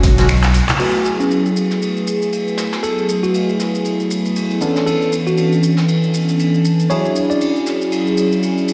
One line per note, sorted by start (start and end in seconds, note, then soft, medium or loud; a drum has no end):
0.00 0.61 B1 medium
0.00 0.14 D3 medium
0.00 0.14 G#3 medium
0.00 0.15 C#4 medium
0.00 0.15 F#4 loud
0.00 kick medium
0.00 snare medium
0.00 open hi-hat loud
0.00 ride medium
0.04 shaker medium
0.18 0.27 D3 loud
0.18 0.27 G#3 medium
0.18 0.27 C#4 loud
0.18 0.27 F#4 loud
0.18 snare loud
0.18 closed hi-hat medium
0.18 ride medium
0.18 shaker soft
0.29 finger snap loud
0.29 snare loud
0.29 closed hi-hat medium
0.29 ride medium
0.29 shaker soft
0.44 snare loud
0.44 clap medium
0.44 closed hi-hat soft
0.44 ride medium
0.44 shaker soft
0.54 snare loud
0.54 open hi-hat medium
0.54 ride medium
0.54 shaker medium
0.69 snare loud
0.69 clap loud
0.69 closed hi-hat soft
0.69 ride medium
0.69 low conga medium
0.69 shaker soft
0.79 4.58 F#3 medium
0.79 4.58 A3 medium
0.79 4.58 B3 medium
0.79 4.59 E4 medium
0.79 1.07 F#4 loud
0.79 4.59 G#4 medium
0.79 crash medium
0.79 ride medium
0.79 shaker soft
0.95 shaker soft
1.04 ride medium
1.04 shaker medium
1.20 1.47 C#4 medium
1.20 shaker soft
1.30 ride medium
1.30 shaker soft
1.46 ride soft
1.46 shaker soft
1.57 ride medium
1.57 shaker medium
1.71 snare soft
1.71 shaker soft
1.82 ride medium
1.82 shaker soft
1.97 shaker soft
2.07 ride medium
2.07 shaker medium
2.22 shaker soft
2.32 ride medium
2.32 shaker soft
2.48 shaker soft
2.57 snare medium
2.57 ride medium
2.57 shaker medium
2.72 snare loud
2.72 ride medium
2.72 shaker soft
2.83 3.10 A4 medium
2.83 ride medium
2.83 shaker soft
2.98 ride soft
2.98 shaker soft
3.08 ride medium
3.08 shaker medium
3.22 3.50 F#4 medium
3.22 ride soft
3.22 shaker soft
3.34 ride medium
3.34 shaker soft
3.49 shaker soft
3.60 snare soft
3.60 ride medium
3.60 shaker medium
3.75 shaker soft
3.84 ride medium
3.84 shaker soft
4.00 shaker soft
4.10 ride medium
4.10 shaker medium
4.25 ride soft
4.25 shaker soft
4.36 ride medium
4.36 shaker soft
4.51 shaker soft
4.60 6.87 E3 medium
4.60 6.87 B3 medium
4.60 6.87 C#4 medium
4.60 6.87 D4 medium
4.60 6.87 A4 medium
4.60 ride medium
4.60 shaker medium
4.76 snare soft
4.76 shaker soft
4.86 5.14 A4 loud
4.86 ride medium
4.86 shaker soft
5.02 shaker soft
5.12 ride medium
5.12 shaker medium
5.27 5.53 F#4 medium
5.27 shaker soft
5.37 ride medium
5.37 shaker soft
5.52 ride soft
5.52 shaker soft
5.63 ride medium
5.63 shaker medium
5.77 snare medium
5.77 shaker soft
5.88 ride medium
5.88 shaker soft
6.03 shaker soft
6.13 ride medium
6.13 shaker medium
6.29 shaker soft
6.39 ride medium
6.39 shaker soft
6.54 shaker soft
6.64 ride medium
6.64 shaker medium
6.80 shaker soft
6.89 8.73 F#3 medium
6.89 8.73 C#4 medium
6.89 8.73 D4 medium
6.89 8.73 E4 medium
6.89 8.73 G#4 medium
6.89 7.17 C#5 medium
6.89 ride medium
6.89 shaker soft
7.05 ride soft
7.05 shaker soft
7.15 ride medium
7.15 shaker medium
7.30 7.57 D5 medium
7.30 ride soft
7.30 shaker soft
7.41 ride medium
7.41 shaker soft
7.56 shaker soft
7.66 snare soft
7.66 ride medium
7.66 shaker medium
7.81 shaker soft
7.92 ride medium
7.92 shaker soft
8.07 shaker soft
8.17 ride medium
8.17 shaker medium
8.32 ride soft
8.32 shaker soft
8.42 ride medium
8.42 shaker soft
8.58 shaker soft
8.68 ride medium
8.68 shaker medium